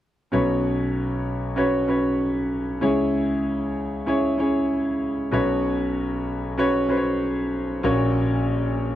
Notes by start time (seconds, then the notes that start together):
0.32 B1 B2 C#4 F#4 B4 C#5
1.56 C#4 F#4 B4 C#5
1.88 C#4 F#4 B4 C#5
2.81 C#2 C#3 C#4 E4 G#4 C#5
4.06 C#4 E4 G#4 C#5
4.38 C#4 E4 G#4 C#5
5.31 B1 B2 C#4 F#4 B4 C#5
6.58 C#4 F#4 B4 C#5
6.89 C#4 F#4 B4 C5
6.97 C#5
7.83 A#1 A#2 C#4 F#4 A#4 C#5